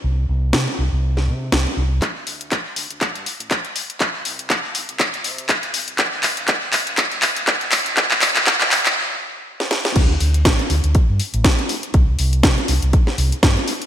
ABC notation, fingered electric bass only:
X:1
M:4/4
L:1/16
Q:"Swing 16ths" 1/4=121
K:C
V:1 name="Fingered electric bass" clef=bass
C,,2 C,,2 C, z C,, C,,3 C,2 C,, z C,,2 | D,,2 D,,2 A,,, z D,, D,, z G,, z A,,, z4 | C,,2 C,,2 C, z C,, C,,3 C,2 C,, z C,,2 | D,,2 D,,2 A,,, z D,, D,, z G,, z A,,, z4 |
C,,2 C,,2 C, z C,, C,, z8 | D,,2 D,,2 A,,, z D,, D,, z G,, z A,,, z4 | C,,2 C,,2 C, z C,, C,, z2 C,, z G,, z3 |]